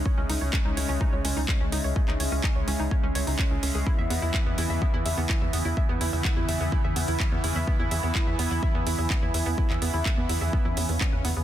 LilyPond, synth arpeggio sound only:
\new Staff \with { instrumentName = "Synth arpeggio sound" } { \time 4/4 \key e \major \tempo 4 = 126 cis''16 cis'16 dis'16 cis''16 cis'16 dis'16 cis''16 cis'16 dis'16 cis''16 cis'16 dis'16 cis''16 cis'16 dis'16 cis''16 | cis'16 dis'16 cis''16 cis'16 dis'16 cis''16 cis'16 dis'16 cis''16 cis'16 cis''16 dis'16 cis'16 cis'16 cis'16 gis'16 | e'16 e''16 b16 e'16 e''16 b16 e'16 e''16 b16 e'16 e''16 b16 e'16 e''16 b16 e'16 | e''16 b16 e'16 e''16 b16 e'16 e''16 b16 e'16 e''16 b16 e'16 e''16 b16 e'16 e''16 |
b16 e'16 e''16 b16 e'16 e''16 b16 e'16 e''16 b16 e'16 e''16 b16 e'16 e''16 b16 | e'16 e''16 b16 e'16 e''16 b16 e'16 e''16 b16 e'16 b16 b16 b16 b'16 b16 b16 | }